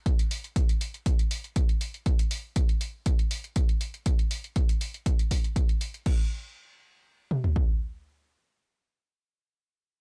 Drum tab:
CC |----------------|----------------|----------------|x---------------|
HH |xxoxxxoxxxoxxxox|xxo-xxo-xxoxxxox|xxoxxxoxxxoxxxox|----------------|
T2 |----------------|----------------|----------------|----------o-----|
FT |----------------|----------------|----------------|-----------o----|
BD |o---o---o---o---|o---o---o---o---|o---o---o-o-o---|o-----------o---|

CC |----------------|
HH |----------------|
T2 |----------------|
FT |----------------|
BD |----------------|